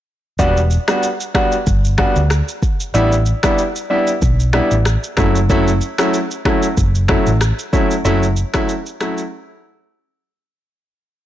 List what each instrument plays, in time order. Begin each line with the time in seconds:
0.39 fingered electric bass E1, grand piano G3 B3 D4 F#4, kick, shaker
0.57 shaker
0.70 shaker
0.88 grand piano G3 B3 D4 F#4, finger snap, cross-stick, shaker
1.03 shaker
1.20 shaker
1.34 grand piano G3 B3 D4 F#4, finger snap, kick, cross-stick
1.52 shaker
1.67 fingered electric bass G1, kick, shaker
1.84 shaker
1.98 grand piano G3 B3 D4 F#4, finger snap, kick, cross-stick
2.16 fingered electric bass D2, shaker
2.30 finger snap, cross-stick, shaker
2.48 shaker
2.63 kick, shaker
2.80 shaker
2.94 fingered electric bass A1, grand piano G3 B3 D4 E4, shaker
3.12 shaker
3.26 shaker
3.43 grand piano G3 B3 D4 E4, finger snap, kick, cross-stick, shaker
3.58 shaker
3.76 shaker
3.90 grand piano G3 B3 D4 E4
4.07 shaker
4.22 fingered electric bass B1, kick, shaker
4.40 shaker
4.53 grand piano G3 B3 D4 E4, finger snap, cross-stick
4.71 fingered electric bass A1, shaker
4.85 finger snap, cross-stick, shaker
5.04 shaker
5.17 fingered electric bass F#1, grand piano F#3 A3 C#4 E4, finger snap, kick, cross-stick, shaker
5.35 shaker
5.50 grand piano F#3 A3 C#4 E4, kick, shaker
5.68 shaker
5.81 shaker
5.98 grand piano F#3 A3 C#4 E4, finger snap, cross-stick, shaker
6.14 shaker
6.31 shaker
6.45 grand piano F#3 A3 C#4 E4, finger snap, kick, cross-stick
6.62 shaker
6.77 fingered electric bass F#1, kick, shaker
6.95 shaker
7.08 grand piano F#3 A3 C#4 E4, finger snap, kick, cross-stick
7.26 fingered electric bass A1, shaker
7.41 finger snap, cross-stick, shaker
7.59 shaker
7.73 grand piano F#3 A3 C#4 E4, kick, shaker
7.91 shaker
8.05 fingered electric bass F#1, grand piano F#3 A3 C#4 E4, shaker
8.23 shaker
8.36 shaker
8.54 grand piano F#3 A3 C#4 E4, finger snap, kick, cross-stick, shaker
8.69 shaker
8.86 shaker
9.00 grand piano F#3 A3 C#4 E4, finger snap, cross-stick, shaker
9.18 shaker